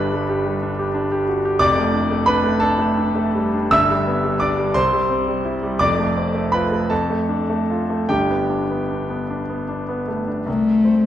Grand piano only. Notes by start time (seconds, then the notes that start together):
Already playing: G1 G2 G3 D4 B4 B5
0.13 G3
0.29 G4
0.46 G3
0.63 D4
0.79 G4
0.94 D4
1.12 G4
1.28 F#4
1.45 G4
1.59 F1 F2 D5 D6
1.78 A3
1.94 D4
2.11 A3
2.26 D4 B4 B5
2.44 A3
2.60 D4 A4 A5
2.79 A3
2.97 D4
3.15 A3
3.35 G3
3.54 D4
3.71 G1 G2 E5 E6
3.90 G3
4.07 B3
4.24 G3
4.40 D4 D5 D6
4.58 G3
4.74 C2 C5 C6
4.93 G3
5.10 C4
5.27 G3
5.45 E4
5.63 G3
5.79 F1 F2 D5 D6
5.99 A3
6.17 C4
6.35 A3
6.52 F4 B4 B5
6.72 A3
6.90 F2 A4 A5
7.10 A3
7.29 D4
7.50 A3
7.70 F4
7.90 A3
8.09 G1 G2 G4 G5
8.30 B3
8.49 D4
8.70 B3
8.91 D4
9.10 B3
9.30 D4
9.49 B3
9.68 D4
9.89 B3
10.08 A3
10.27 D4
10.46 C2
10.85 C4